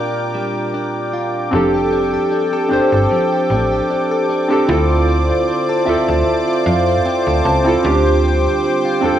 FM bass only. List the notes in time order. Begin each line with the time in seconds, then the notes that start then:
1.53 F1
2.71 G1
2.92 G1
3.50 A1
4.69 D2
5.87 D2
6.08 D2
6.66 F2
7.27 D2
7.45 C#2
7.85 D2
9.03 E2